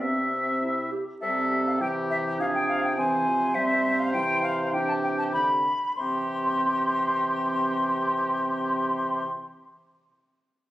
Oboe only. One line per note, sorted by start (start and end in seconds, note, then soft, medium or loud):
0.01 0.90 E5 soft
1.22 1.83 A4 soft
1.82 2.41 G4 soft
2.39 2.98 G#4 soft
2.99 4.70 C5 soft
4.74 5.34 G4 soft
5.35 5.49 G4 soft
5.98 9.26 G4 soft